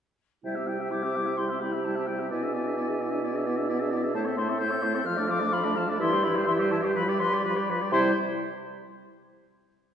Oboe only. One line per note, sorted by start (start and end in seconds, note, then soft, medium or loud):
0.45 0.57 G5 soft
0.55 0.69 E5 soft
0.67 0.82 G5 soft
0.80 0.90 E5 soft
0.91 1.04 G5 soft
1.03 1.18 E5 soft
1.16 1.28 G5 soft
1.26 1.37 E5 soft
1.38 1.51 G5 soft
1.49 1.62 E5 soft
1.60 1.74 G5 soft
1.72 1.83 E5 soft
1.84 1.97 G5 soft
1.95 2.08 E5 soft
2.07 2.21 G5 soft
2.19 2.30 E5 soft
2.31 2.45 D5 soft
2.43 2.55 E5 soft
2.54 2.69 D5 soft
2.67 2.76 E5 soft
2.77 2.90 D5 soft
2.88 3.02 E5 soft
3.01 3.12 D5 soft
3.11 3.22 E5 soft
3.24 3.38 D5 soft
3.36 3.48 E5 soft
3.46 3.58 D5 soft
3.57 3.68 E5 soft
3.69 3.82 D5 soft
3.80 3.93 E5 soft
3.92 4.05 D5 soft
4.03 4.14 E5 soft
4.15 4.28 C5 medium
4.26 4.40 E5 soft
4.38 4.51 C5 soft
4.50 4.59 E5 soft
4.60 4.72 C5 medium
4.71 4.84 E5 medium
4.83 4.97 C5 soft
4.95 5.06 E5 soft
5.06 5.19 F5 medium
5.17 5.29 D5 medium
5.28 5.41 F5 medium
5.40 5.51 D5 soft
5.52 5.66 F5 medium
5.64 5.77 D5 medium
5.76 5.91 F5 medium
5.89 5.99 D5 medium
6.00 6.14 E5 medium
6.13 6.25 C5 medium
6.24 6.38 E5 medium
6.36 6.47 C5 medium
6.47 6.61 E5 medium
6.60 6.73 C5 medium
6.72 6.85 E5 medium
6.84 6.95 C5 medium
6.96 7.10 B4 medium
7.09 7.22 D5 medium
7.20 7.35 B4 medium
7.34 7.44 D5 soft
7.45 7.58 B4 medium
7.56 7.72 D5 medium
7.70 7.83 B4 medium
7.81 7.92 D5 medium
7.93 8.13 C5 medium